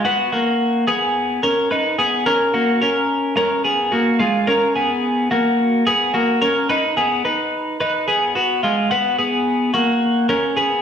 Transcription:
clean electric guitar
0.05 B3 F#4
0.32 A#3 F#4
0.87 B3 G#4
1.43 C#4 A#4
1.71 D#4 B4
1.99 B3 G#4
2.26 C#4 A#4
2.54 A#3 F#4
2.82 C#4 A#4
3.37 C#4 A#4
3.64 B3 G#4
3.92 A#3 F#4
4.19 G#3 F4
4.47 C#4 A#4
4.75 B3 G#4
5.31 A#3 F#4
5.87 B3 G#4
6.14 A#3 F#4
6.42 C#4 A#4
6.69 D#4 B4
6.97 B3 G#4
7.25 D#4 B4
7.81 D#4 B4
8.08 B3 G#4
8.35 B3 F#4
8.63 G#3 F4
8.91 B3 F#4
9.18 B3 G#4
9.74 A#3 F#4
10.29 C#4 A#4
10.57 B3 G#4

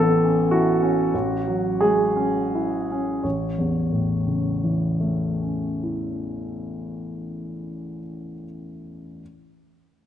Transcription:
grand piano
Already playing: A1 E3 B3 A4
0.24 C#4
0.51 E4 F#4
0.82 C#4
1.14 A1
1.48 F#3
1.81 G#3 G#4
2.16 C#4
2.55 E4
2.92 C#4
3.23 A1 C#5
3.58 E2
3.92 A2
4.27 C#3
4.64 E3
5.00 A3
5.42 C#4
5.83 E4

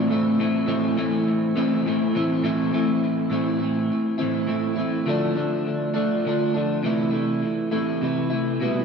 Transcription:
overdriven electric guitar
Already playing: C4 E4
0.09 A2 E3 A3 C4 E4
0.39 A2 E3 A3 C4 E4
0.66 A2 E3 A3 C4 E4
0.97 A2 E3 A3 C4 E4
1.55 A2 E3 A3 C4 E4
1.85 A2 E3 A3 C4 E4
2.14 A2 E3 A3 C4 E4
2.44 A2 E3 A3 C4 E4
2.72 A2 E3 A3 C4 E4
3.30 A2 E3 A3 C4 E4
3.59 C4 E4
3.64 A3
4.18 A2 E3 A3 C4 E4
4.47 E3 A3 C4 E4
4.76 A3 C4 E4
5.06 D3 F3 A3 D4
5.36 F3 A3 D4
5.94 D3 F3 A3 D4
6.25 D3 F3 A3 D4
6.54 F3 A3 D4
6.83 C3 E3 A3 E4
7.11 E3 A3 E4
7.71 C3 E3 A3 E4
8.01 C3 E3 A3 E4
8.30 E3 A3 E4
8.60 B2 G3 B3 E4

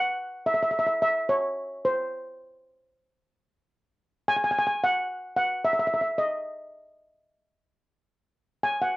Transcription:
steel pan
Already playing: F#5
0.46 E5
0.54 E5
0.63 E5
0.71 E5
0.79 E5
0.87 E5
1.02 E5
1.29 C#5
1.85 C5
4.28 G#5
4.37 G#5
4.44 G#5
4.51 G#5
4.59 G#5
4.67 G#5
4.84 F#5
5.36 F#5
5.64 E5
5.73 E5
5.79 E5
5.87 E5
5.94 E5
6.01 E5
6.18 D#5
8.63 G#5
8.81 F#5

